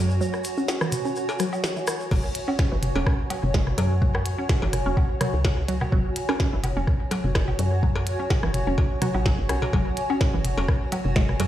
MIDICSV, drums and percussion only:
0, 0, Header, 1, 2, 480
1, 0, Start_track
1, 0, Tempo, 476190
1, 210, Time_signature, 4, 2, 24, 8
1, 11567, End_track
2, 0, Start_track
2, 0, Title_t, "Drums"
2, 100, Note_on_c, 9, 82, 35
2, 201, Note_off_c, 9, 82, 0
2, 214, Note_on_c, 9, 82, 52
2, 314, Note_off_c, 9, 82, 0
2, 336, Note_on_c, 9, 82, 25
2, 340, Note_on_c, 9, 37, 41
2, 437, Note_off_c, 9, 82, 0
2, 441, Note_off_c, 9, 37, 0
2, 446, Note_on_c, 9, 82, 90
2, 451, Note_on_c, 9, 42, 90
2, 547, Note_off_c, 9, 82, 0
2, 552, Note_off_c, 9, 42, 0
2, 576, Note_on_c, 9, 82, 35
2, 677, Note_off_c, 9, 82, 0
2, 689, Note_on_c, 9, 77, 42
2, 690, Note_on_c, 9, 38, 98
2, 691, Note_on_c, 9, 82, 46
2, 790, Note_off_c, 9, 38, 0
2, 790, Note_off_c, 9, 77, 0
2, 792, Note_off_c, 9, 82, 0
2, 817, Note_on_c, 9, 82, 24
2, 818, Note_on_c, 9, 37, 80
2, 918, Note_off_c, 9, 82, 0
2, 919, Note_off_c, 9, 37, 0
2, 928, Note_on_c, 9, 45, 82
2, 930, Note_on_c, 9, 82, 96
2, 931, Note_on_c, 9, 42, 88
2, 1029, Note_off_c, 9, 45, 0
2, 1031, Note_off_c, 9, 42, 0
2, 1031, Note_off_c, 9, 82, 0
2, 1061, Note_on_c, 9, 82, 38
2, 1162, Note_off_c, 9, 82, 0
2, 1167, Note_on_c, 9, 82, 54
2, 1268, Note_off_c, 9, 82, 0
2, 1299, Note_on_c, 9, 56, 68
2, 1302, Note_on_c, 9, 82, 25
2, 1400, Note_off_c, 9, 56, 0
2, 1403, Note_off_c, 9, 82, 0
2, 1403, Note_on_c, 9, 82, 84
2, 1408, Note_on_c, 9, 37, 43
2, 1410, Note_on_c, 9, 42, 91
2, 1504, Note_off_c, 9, 82, 0
2, 1509, Note_off_c, 9, 37, 0
2, 1511, Note_off_c, 9, 42, 0
2, 1540, Note_on_c, 9, 77, 44
2, 1544, Note_on_c, 9, 82, 36
2, 1640, Note_off_c, 9, 77, 0
2, 1645, Note_off_c, 9, 82, 0
2, 1650, Note_on_c, 9, 38, 93
2, 1657, Note_on_c, 9, 82, 56
2, 1751, Note_off_c, 9, 38, 0
2, 1757, Note_off_c, 9, 82, 0
2, 1780, Note_on_c, 9, 82, 25
2, 1881, Note_off_c, 9, 82, 0
2, 1887, Note_on_c, 9, 82, 91
2, 1889, Note_on_c, 9, 42, 87
2, 1891, Note_on_c, 9, 37, 85
2, 1988, Note_off_c, 9, 82, 0
2, 1990, Note_off_c, 9, 42, 0
2, 1992, Note_off_c, 9, 37, 0
2, 2019, Note_on_c, 9, 82, 41
2, 2119, Note_off_c, 9, 82, 0
2, 2129, Note_on_c, 9, 49, 104
2, 2131, Note_on_c, 9, 36, 115
2, 2131, Note_on_c, 9, 56, 67
2, 2230, Note_off_c, 9, 49, 0
2, 2232, Note_off_c, 9, 36, 0
2, 2232, Note_off_c, 9, 56, 0
2, 2369, Note_on_c, 9, 42, 92
2, 2470, Note_off_c, 9, 42, 0
2, 2500, Note_on_c, 9, 77, 46
2, 2601, Note_off_c, 9, 77, 0
2, 2610, Note_on_c, 9, 38, 98
2, 2611, Note_on_c, 9, 36, 123
2, 2611, Note_on_c, 9, 37, 42
2, 2711, Note_off_c, 9, 37, 0
2, 2711, Note_off_c, 9, 38, 0
2, 2712, Note_off_c, 9, 36, 0
2, 2849, Note_on_c, 9, 42, 94
2, 2849, Note_on_c, 9, 45, 85
2, 2949, Note_off_c, 9, 45, 0
2, 2950, Note_off_c, 9, 42, 0
2, 2980, Note_on_c, 9, 56, 66
2, 3080, Note_off_c, 9, 56, 0
2, 3090, Note_on_c, 9, 36, 122
2, 3090, Note_on_c, 9, 37, 86
2, 3191, Note_off_c, 9, 36, 0
2, 3191, Note_off_c, 9, 37, 0
2, 3329, Note_on_c, 9, 77, 49
2, 3331, Note_on_c, 9, 42, 94
2, 3430, Note_off_c, 9, 77, 0
2, 3431, Note_off_c, 9, 42, 0
2, 3458, Note_on_c, 9, 45, 98
2, 3559, Note_off_c, 9, 45, 0
2, 3570, Note_on_c, 9, 36, 122
2, 3571, Note_on_c, 9, 38, 96
2, 3671, Note_off_c, 9, 36, 0
2, 3672, Note_off_c, 9, 38, 0
2, 3699, Note_on_c, 9, 37, 43
2, 3699, Note_on_c, 9, 45, 87
2, 3800, Note_off_c, 9, 37, 0
2, 3800, Note_off_c, 9, 45, 0
2, 3809, Note_on_c, 9, 56, 65
2, 3810, Note_on_c, 9, 42, 93
2, 3910, Note_off_c, 9, 56, 0
2, 3911, Note_off_c, 9, 42, 0
2, 4050, Note_on_c, 9, 36, 124
2, 4151, Note_off_c, 9, 36, 0
2, 4181, Note_on_c, 9, 37, 83
2, 4181, Note_on_c, 9, 77, 46
2, 4281, Note_off_c, 9, 37, 0
2, 4281, Note_off_c, 9, 77, 0
2, 4290, Note_on_c, 9, 42, 96
2, 4390, Note_off_c, 9, 42, 0
2, 4530, Note_on_c, 9, 36, 126
2, 4530, Note_on_c, 9, 38, 98
2, 4631, Note_off_c, 9, 36, 0
2, 4631, Note_off_c, 9, 38, 0
2, 4659, Note_on_c, 9, 56, 59
2, 4760, Note_off_c, 9, 56, 0
2, 4769, Note_on_c, 9, 37, 42
2, 4769, Note_on_c, 9, 42, 98
2, 4769, Note_on_c, 9, 45, 84
2, 4870, Note_off_c, 9, 37, 0
2, 4870, Note_off_c, 9, 42, 0
2, 4870, Note_off_c, 9, 45, 0
2, 5010, Note_on_c, 9, 36, 122
2, 5010, Note_on_c, 9, 77, 47
2, 5111, Note_off_c, 9, 36, 0
2, 5111, Note_off_c, 9, 77, 0
2, 5249, Note_on_c, 9, 37, 85
2, 5249, Note_on_c, 9, 45, 103
2, 5250, Note_on_c, 9, 42, 95
2, 5350, Note_off_c, 9, 37, 0
2, 5350, Note_off_c, 9, 45, 0
2, 5351, Note_off_c, 9, 42, 0
2, 5489, Note_on_c, 9, 38, 93
2, 5489, Note_on_c, 9, 56, 65
2, 5490, Note_on_c, 9, 36, 123
2, 5590, Note_off_c, 9, 38, 0
2, 5590, Note_off_c, 9, 56, 0
2, 5591, Note_off_c, 9, 36, 0
2, 5730, Note_on_c, 9, 42, 93
2, 5831, Note_off_c, 9, 42, 0
2, 5859, Note_on_c, 9, 37, 41
2, 5859, Note_on_c, 9, 45, 84
2, 5859, Note_on_c, 9, 77, 47
2, 5960, Note_off_c, 9, 37, 0
2, 5960, Note_off_c, 9, 45, 0
2, 5960, Note_off_c, 9, 77, 0
2, 5970, Note_on_c, 9, 36, 125
2, 6071, Note_off_c, 9, 36, 0
2, 6210, Note_on_c, 9, 42, 101
2, 6310, Note_off_c, 9, 42, 0
2, 6339, Note_on_c, 9, 37, 80
2, 6339, Note_on_c, 9, 56, 64
2, 6439, Note_off_c, 9, 37, 0
2, 6439, Note_off_c, 9, 56, 0
2, 6449, Note_on_c, 9, 38, 98
2, 6451, Note_on_c, 9, 36, 127
2, 6550, Note_off_c, 9, 38, 0
2, 6551, Note_off_c, 9, 36, 0
2, 6689, Note_on_c, 9, 42, 97
2, 6689, Note_on_c, 9, 45, 84
2, 6689, Note_on_c, 9, 77, 50
2, 6790, Note_off_c, 9, 42, 0
2, 6790, Note_off_c, 9, 45, 0
2, 6790, Note_off_c, 9, 77, 0
2, 6928, Note_on_c, 9, 37, 39
2, 6931, Note_on_c, 9, 36, 121
2, 7029, Note_off_c, 9, 37, 0
2, 7032, Note_off_c, 9, 36, 0
2, 7168, Note_on_c, 9, 56, 66
2, 7170, Note_on_c, 9, 42, 97
2, 7269, Note_off_c, 9, 56, 0
2, 7271, Note_off_c, 9, 42, 0
2, 7298, Note_on_c, 9, 45, 95
2, 7399, Note_off_c, 9, 45, 0
2, 7409, Note_on_c, 9, 37, 81
2, 7411, Note_on_c, 9, 36, 126
2, 7411, Note_on_c, 9, 38, 94
2, 7510, Note_off_c, 9, 37, 0
2, 7512, Note_off_c, 9, 36, 0
2, 7512, Note_off_c, 9, 38, 0
2, 7539, Note_on_c, 9, 45, 84
2, 7539, Note_on_c, 9, 77, 47
2, 7640, Note_off_c, 9, 45, 0
2, 7640, Note_off_c, 9, 77, 0
2, 7650, Note_on_c, 9, 42, 95
2, 7751, Note_off_c, 9, 42, 0
2, 7891, Note_on_c, 9, 36, 121
2, 7992, Note_off_c, 9, 36, 0
2, 8019, Note_on_c, 9, 37, 39
2, 8019, Note_on_c, 9, 56, 66
2, 8120, Note_off_c, 9, 37, 0
2, 8120, Note_off_c, 9, 56, 0
2, 8131, Note_on_c, 9, 42, 96
2, 8232, Note_off_c, 9, 42, 0
2, 8370, Note_on_c, 9, 38, 92
2, 8370, Note_on_c, 9, 77, 47
2, 8371, Note_on_c, 9, 36, 124
2, 8471, Note_off_c, 9, 38, 0
2, 8471, Note_off_c, 9, 77, 0
2, 8472, Note_off_c, 9, 36, 0
2, 8499, Note_on_c, 9, 37, 76
2, 8600, Note_off_c, 9, 37, 0
2, 8609, Note_on_c, 9, 45, 84
2, 8611, Note_on_c, 9, 42, 96
2, 8710, Note_off_c, 9, 45, 0
2, 8711, Note_off_c, 9, 42, 0
2, 8848, Note_on_c, 9, 56, 66
2, 8851, Note_on_c, 9, 36, 124
2, 8949, Note_off_c, 9, 56, 0
2, 8952, Note_off_c, 9, 36, 0
2, 9089, Note_on_c, 9, 37, 40
2, 9089, Note_on_c, 9, 45, 99
2, 9090, Note_on_c, 9, 42, 99
2, 9190, Note_off_c, 9, 37, 0
2, 9190, Note_off_c, 9, 42, 0
2, 9190, Note_off_c, 9, 45, 0
2, 9218, Note_on_c, 9, 77, 45
2, 9319, Note_off_c, 9, 77, 0
2, 9330, Note_on_c, 9, 38, 90
2, 9331, Note_on_c, 9, 36, 124
2, 9431, Note_off_c, 9, 38, 0
2, 9432, Note_off_c, 9, 36, 0
2, 9569, Note_on_c, 9, 37, 75
2, 9570, Note_on_c, 9, 42, 94
2, 9669, Note_off_c, 9, 37, 0
2, 9671, Note_off_c, 9, 42, 0
2, 9699, Note_on_c, 9, 45, 81
2, 9699, Note_on_c, 9, 56, 62
2, 9800, Note_off_c, 9, 45, 0
2, 9800, Note_off_c, 9, 56, 0
2, 9811, Note_on_c, 9, 36, 117
2, 9811, Note_on_c, 9, 56, 68
2, 9912, Note_off_c, 9, 36, 0
2, 9912, Note_off_c, 9, 56, 0
2, 10050, Note_on_c, 9, 42, 93
2, 10151, Note_off_c, 9, 42, 0
2, 10180, Note_on_c, 9, 77, 45
2, 10281, Note_off_c, 9, 77, 0
2, 10289, Note_on_c, 9, 38, 90
2, 10290, Note_on_c, 9, 37, 39
2, 10291, Note_on_c, 9, 36, 122
2, 10390, Note_off_c, 9, 38, 0
2, 10391, Note_off_c, 9, 36, 0
2, 10391, Note_off_c, 9, 37, 0
2, 10529, Note_on_c, 9, 42, 92
2, 10529, Note_on_c, 9, 45, 79
2, 10630, Note_off_c, 9, 42, 0
2, 10630, Note_off_c, 9, 45, 0
2, 10660, Note_on_c, 9, 56, 68
2, 10761, Note_off_c, 9, 56, 0
2, 10770, Note_on_c, 9, 36, 115
2, 10770, Note_on_c, 9, 37, 78
2, 10871, Note_off_c, 9, 36, 0
2, 10871, Note_off_c, 9, 37, 0
2, 11009, Note_on_c, 9, 42, 94
2, 11011, Note_on_c, 9, 77, 48
2, 11109, Note_off_c, 9, 42, 0
2, 11112, Note_off_c, 9, 77, 0
2, 11141, Note_on_c, 9, 45, 88
2, 11241, Note_off_c, 9, 45, 0
2, 11248, Note_on_c, 9, 38, 88
2, 11250, Note_on_c, 9, 36, 122
2, 11349, Note_off_c, 9, 38, 0
2, 11351, Note_off_c, 9, 36, 0
2, 11381, Note_on_c, 9, 37, 39
2, 11381, Note_on_c, 9, 45, 76
2, 11481, Note_off_c, 9, 37, 0
2, 11481, Note_off_c, 9, 45, 0
2, 11488, Note_on_c, 9, 42, 92
2, 11491, Note_on_c, 9, 56, 68
2, 11567, Note_off_c, 9, 42, 0
2, 11567, Note_off_c, 9, 56, 0
2, 11567, End_track
0, 0, End_of_file